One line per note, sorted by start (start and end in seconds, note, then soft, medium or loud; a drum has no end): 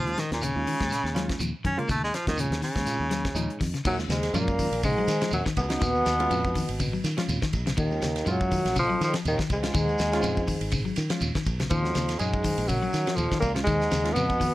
0.00 0.14 D#2 medium
0.00 0.21 F3 loud
0.05 0.22 G#3 medium
0.05 0.22 C#4 medium
0.05 0.23 F4 medium
0.05 closed hi-hat soft
0.18 0.31 D#3 medium
0.18 snare medium
0.18 closed hi-hat soft
0.18 shekere soft
0.32 0.52 D#2 medium
0.32 0.45 A#2 medium
0.32 snare medium
0.32 closed hi-hat soft
0.41 0.56 C#3 medium
0.41 1.38 C#3 loud
0.41 closed hi-hat medium
0.41 shekere medium
0.56 0.65 D#2 medium
0.56 0.77 G#3 medium
0.56 0.77 C#4 medium
0.56 0.77 F4 medium
0.66 0.75 D#3 medium
0.66 open hi-hat medium
0.66 shekere soft
0.80 0.90 D#2 medium
0.80 0.94 G#3 medium
0.80 kick medium
0.80 snare medium
0.80 closed hi-hat soft
0.90 snare soft
0.90 closed hi-hat medium
0.90 shekere loud
1.04 1.34 D#2 medium
1.04 snare soft
1.15 1.29 F#3 medium
1.15 1.37 G#3 medium
1.15 1.37 C#4 medium
1.15 1.37 F4 medium
1.15 snare medium
1.15 closed hi-hat medium
1.15 shekere soft
1.29 kick medium
1.29 snare medium
1.29 closed hi-hat soft
1.39 1.52 D#2 medium
1.39 1.53 F3 medium
1.39 closed hi-hat medium
1.39 shekere medium
1.64 1.76 F#2 medium
1.64 1.72 D#3 medium
1.64 1.81 C#4 medium
1.64 kick medium
1.64 closed hi-hat medium
1.64 shekere soft
1.77 1.84 C#3 medium
1.77 1.89 G#3 medium
1.77 1.89 A#3 medium
1.77 1.89 C#4 medium
1.77 1.89 F4 loud
1.77 closed hi-hat soft
1.88 2.10 D#2 loud
1.88 2.02 C#3 medium
1.88 2.03 A3 medium
1.88 kick loud
1.88 closed hi-hat medium
1.88 shekere medium
2.04 2.16 G#3 medium
2.04 snare soft
2.14 2.27 F3 medium
2.14 snare medium
2.14 closed hi-hat medium
2.14 shekere soft
2.26 2.48 D#2 medium
2.26 2.42 D#3 medium
2.26 2.48 G#3 medium
2.26 2.48 C#4 medium
2.26 2.48 F4 medium
2.26 kick medium
2.26 snare medium
2.26 closed hi-hat soft
2.37 2.51 C#3 medium
2.37 2.63 C#3 medium
2.37 closed hi-hat medium
2.37 shekere medium
2.50 2.60 D#2 medium
2.50 snare medium
2.50 closed hi-hat soft
2.62 3.58 C#3 loud
2.62 2.69 D#3 medium
2.62 snare soft
2.62 open hi-hat medium
2.62 shekere soft
2.75 2.85 D#2 medium
2.75 2.89 G#3 medium
2.75 kick medium
2.75 snare medium
2.86 3.04 G#3 medium
2.86 3.05 C#4 medium
2.86 3.05 F4 medium
2.86 snare soft
2.86 closed hi-hat medium
2.86 shekere medium
3.00 3.30 D#2 medium
3.10 3.24 F#3 medium
3.10 snare medium
3.10 closed hi-hat medium
3.10 shekere soft
3.25 kick medium
3.25 snare medium
3.25 closed hi-hat soft
3.35 3.47 D#2 medium
3.35 3.49 F3 medium
3.35 3.57 G#3 medium
3.35 3.57 C#4 medium
3.35 3.58 D#4 loud
3.35 closed hi-hat medium
3.35 shekere medium
3.50 closed hi-hat soft
3.60 3.72 F2 medium
3.60 3.67 D#3 medium
3.60 kick medium
3.60 snare soft
3.60 open hi-hat medium
3.60 shekere soft
3.74 3.80 C#3 medium
3.74 snare soft
3.74 closed hi-hat soft
3.85 4.06 D#2 loud
3.85 3.96 F#2 medium
3.85 3.98 D#3 medium
3.85 3.98 F#3 medium
3.85 3.90 C#4 medium
3.85 3.91 F4 loud
3.85 kick loud
3.85 crash loud
3.85 shekere medium
3.98 4.10 G#3 medium
3.98 4.11 C#4 medium
3.98 4.11 F4 medium
3.98 snare soft
3.98 shekere soft
4.08 4.30 D#2 medium
4.08 4.33 G#2 medium
4.08 4.23 C#3 medium
4.08 4.36 G#3 medium
4.08 snare medium
4.08 ride bell medium
4.08 shekere medium
4.23 snare soft
4.23 ride bell medium
4.23 shekere soft
4.34 4.66 F#2 loud
4.34 4.83 A#2 medium
4.34 4.48 F3 medium
4.34 4.69 G#3 medium
4.34 4.84 A#3 loud
4.34 4.69 C#4 medium
4.34 4.70 F4 medium
4.34 ride bell medium
4.34 shekere medium
4.48 kick medium
4.48 shekere soft
4.59 4.72 D#3 medium
4.59 kick medium
4.59 open hi-hat medium
4.59 shekere medium
4.71 5.02 A#1 medium
4.71 ride bell medium
4.71 shekere soft
4.83 5.29 G#2 medium
4.83 4.91 C#3 loud
4.83 5.30 G#3 loud
4.83 kick medium
4.83 ride bell medium
4.83 shekere medium
4.97 5.11 F#3 medium
4.97 shekere soft
5.07 5.19 D#3 medium
5.07 snare soft
5.07 ride bell medium
5.07 shekere medium
5.21 5.35 F3 medium
5.21 snare medium
5.21 ride bell medium
5.21 shekere soft
5.31 5.44 D#2 loud
5.31 5.44 F#2 medium
5.31 5.44 F#3 medium
5.31 ride bell medium
5.31 shekere medium
5.46 5.59 D#3 medium
5.46 muted fingered electric bass stroke soft
5.46 kick medium
5.46 snare medium
5.46 shekere soft
5.57 5.78 C#2 loud
5.57 7.00 B2 loud
5.57 7.00 B3 loud
5.57 kick medium
5.57 ride bell medium
5.57 shekere medium
5.69 5.77 C#3 medium
5.69 5.81 G#3 medium
5.69 5.81 C#4 medium
5.69 5.81 D#4 medium
5.69 snare medium
5.69 ride bell medium
5.69 shekere soft
5.81 6.02 D#2 loud
5.81 5.94 D#3 loud
5.81 kick loud
5.81 snare soft
5.81 ride bell medium
5.81 shekere medium
5.95 shekere soft
6.06 6.27 D#2 loud
6.06 muted clean electric guitar stroke medium
6.06 snare medium
6.06 ride bell medium
6.06 shekere medium
6.19 6.49 G#3 medium
6.19 6.49 C#4 medium
6.19 6.49 F4 loud
6.19 ride bell medium
6.19 shekere soft
6.30 6.63 F2 loud
6.30 6.44 F3 medium
6.30 ride bell medium
6.30 shekere medium
6.45 kick medium
6.45 shekere soft
6.55 6.68 D#3 medium
6.55 kick medium
6.55 open hi-hat medium
6.55 shekere medium
6.69 6.99 G#1 medium
6.69 ride bell medium
6.69 shekere soft
6.80 6.87 C#3 medium
6.80 kick medium
6.80 ride bell medium
6.80 shekere loud
6.93 7.06 F#3 medium
6.93 shekere soft
7.04 7.16 D#3 medium
7.04 7.09 C#4 medium
7.04 7.10 F4 loud
7.04 snare soft
7.04 ride bell medium
7.04 shekere medium
7.17 7.31 F3 medium
7.17 7.38 G#3 medium
7.17 7.38 C#4 medium
7.17 7.39 F4 medium
7.17 snare medium
7.17 ride bell medium
7.17 shekere soft
7.29 7.40 D#2 loud
7.29 ride bell medium
7.29 shekere medium
7.42 7.55 D#3 medium
7.42 kick medium
7.42 snare medium
7.42 shekere soft
7.53 7.74 B1 loud
7.53 kick medium
7.53 ride bell medium
7.53 shekere medium
7.66 7.72 C#3 medium
7.66 snare medium
7.66 ride bell medium
7.66 shekere soft
7.77 7.98 D#2 loud
7.77 8.24 D#2 medium
7.77 7.90 D#3 medium
7.77 8.32 D#3 medium
7.77 7.82 C#4 medium
7.77 7.82 F4 medium
7.77 kick loud
7.77 ride bell medium
7.77 shekere medium
7.90 8.02 G#3 medium
7.90 8.03 C#4 medium
7.90 8.03 F4 medium
7.90 shekere soft
8.02 8.23 D#2 medium
8.02 8.15 C#3 medium
8.02 snare medium
8.02 ride bell medium
8.02 shekere medium
8.16 snare soft
8.16 ride bell medium
8.16 shekere soft
8.26 8.59 F#2 loud
8.26 8.77 F#2 medium
8.26 8.62 G#3 medium
8.26 8.62 C#4 medium
8.26 8.62 F4 loud
8.26 muted clean electric guitar stroke medium
8.26 ride bell medium
8.26 shekere medium
8.30 8.78 F#3 loud
8.40 kick medium
8.40 shekere soft
8.51 8.65 D#3 medium
8.51 kick medium
8.51 open hi-hat medium
8.51 shekere medium
8.65 8.95 A#1 medium
8.65 snare soft
8.65 ride bell medium
8.65 shekere soft
8.76 9.00 F2 medium
8.76 8.83 C#3 medium
8.76 9.00 F3 loud
8.76 kick medium
8.76 ride bell soft
8.76 shekere loud
8.89 9.02 F#3 medium
8.89 shekere soft
9.01 9.14 F2 medium
9.01 9.12 D#3 medium
9.01 9.14 F3 medium
9.01 snare soft
9.01 ride bell medium
9.01 shekere medium
9.13 9.27 F3 medium
9.13 snare medium
9.13 ride bell medium
9.13 shekere soft
9.25 9.37 D#2 loud
9.25 9.38 D#2 medium
9.25 9.38 D#3 medium
9.25 ride bell medium
9.25 shekere medium
9.38 9.51 D#3 medium
9.38 kick medium
9.38 snare medium
9.38 shekere soft
9.50 9.70 C#2 loud
9.50 10.94 G#2 medium
9.50 10.94 G#3 loud
9.50 kick medium
9.50 ride bell medium
9.50 shekere medium
9.62 9.69 C#3 medium
9.62 9.74 G#3 medium
9.62 9.74 C#4 medium
9.62 9.74 F4 medium
9.62 snare medium
9.62 ride bell medium
9.62 shekere soft
9.74 9.95 D#2 loud
9.74 9.87 D#3 medium
9.74 kick loud
9.74 ride bell medium
9.74 shekere medium
9.88 shekere soft
9.99 10.20 D#2 medium
9.99 snare medium
9.99 ride bell medium
9.99 shekere medium
10.12 10.41 G#3 medium
10.12 10.42 C#4 loud
10.12 10.42 F4 loud
10.12 snare soft
10.12 ride bell medium
10.12 shekere soft
10.22 10.55 F2 loud
10.22 10.36 F3 medium
10.22 ride bell medium
10.22 shekere medium
10.36 kick medium
10.36 shekere soft
10.47 10.61 D#3 medium
10.47 kick medium
10.47 open hi-hat medium
10.47 shekere medium
10.61 10.91 G#1 medium
10.61 ride bell medium
10.61 shekere soft
10.72 10.79 C#3 medium
10.72 kick medium
10.72 ride bell medium
10.72 shekere loud
10.85 10.98 F#3 medium
10.85 shekere soft
10.96 11.09 D#3 medium
10.96 11.01 C#4 medium
10.96 11.02 F4 medium
10.96 snare soft
10.96 ride bell medium
10.96 shekere medium
11.09 11.23 F3 medium
11.09 11.31 G#3 medium
11.09 11.32 C#4 medium
11.09 11.31 F4 medium
11.09 snare medium
11.09 ride bell medium
11.09 shekere soft
11.21 11.33 D#2 loud
11.21 ride bell medium
11.21 shekere medium
11.34 11.49 D#3 medium
11.34 kick medium
11.34 snare medium
11.34 shekere soft
11.45 11.67 B1 loud
11.45 kick medium
11.45 ride bell medium
11.45 shekere medium
11.59 11.66 C#3 medium
11.59 snare medium
11.59 ride bell soft
11.59 shekere soft
11.70 11.91 D#2 loud
11.70 12.16 F2 medium
11.70 11.84 D#3 medium
11.70 12.20 F3 medium
11.70 11.75 C#4 medium
11.70 11.75 F4 medium
11.70 kick loud
11.70 ride bell medium
11.70 shekere medium
11.83 11.95 G#3 medium
11.83 11.95 C#4 medium
11.83 11.95 F#4 medium
11.83 snare soft
11.83 shekere soft
11.95 12.16 D#2 loud
11.95 12.08 C#3 medium
11.95 snare medium
11.95 ride bell soft
11.95 shekere medium
12.09 snare soft
12.09 ride bell medium
12.09 shekere soft
12.18 12.52 F#2 loud
12.18 12.68 G#2 medium
12.18 12.54 G#3 medium
12.18 12.69 G#3 medium
12.18 12.54 C#4 medium
12.18 12.54 G#4 loud
12.18 ride bell medium
12.18 shekere medium
12.33 kick medium
12.33 shekere soft
12.44 12.57 D#3 medium
12.44 kick medium
12.44 open hi-hat medium
12.44 shekere medium
12.58 12.88 A#1 medium
12.58 ride bell medium
12.58 shekere soft
12.67 13.17 F#2 medium
12.67 12.76 C#3 medium
12.67 13.17 F#3 medium
12.67 kick medium
12.67 ride bell medium
12.67 shekere medium
12.82 12.95 F#3 medium
12.82 shekere soft
12.93 13.05 D#3 medium
12.93 snare soft
12.93 ride bell medium
12.93 shekere medium
13.06 13.20 F3 medium
13.06 snare medium
13.06 ride bell medium
13.06 shekere soft
13.15 13.29 D#2 loud
13.15 13.41 F2 medium
13.15 13.39 F3 medium
13.15 ride bell medium
13.15 shekere medium
13.31 13.45 D#3 medium
13.31 kick medium
13.31 snare medium
13.31 shekere soft
13.39 13.63 C#2 loud
13.39 13.51 A#2 medium
13.39 13.52 A#3 medium
13.39 kick medium
13.39 ride bell medium
13.39 shekere medium
13.54 13.62 C#3 medium
13.54 13.66 G#3 medium
13.54 13.66 C#4 medium
13.54 13.66 F4 medium
13.54 snare medium
13.54 ride bell medium
13.54 shekere soft
13.64 13.88 D#2 loud
13.64 14.11 G#2 medium
13.64 13.80 D#3 loud
13.64 14.14 G#3 loud
13.64 kick loud
13.64 snare soft
13.64 ride bell medium
13.64 shekere medium
13.80 snare soft
13.80 shekere soft
13.91 14.12 D#2 loud
13.91 14.04 C#3 medium
13.91 snare medium
13.91 ride bell medium
13.91 shekere medium
14.03 14.33 G#3 medium
14.03 14.33 C#4 medium
14.03 14.34 F4 loud
14.03 snare soft
14.03 ride bell medium
14.03 shekere soft
14.13 14.48 F2 loud
14.13 14.54 B2 medium
14.13 14.29 C#3 medium
14.13 14.54 B3 loud
14.13 ride bell medium
14.13 shekere medium
14.30 kick medium
14.30 shekere soft
14.40 14.53 D#3 medium
14.40 kick medium
14.40 open hi-hat medium
14.40 shekere medium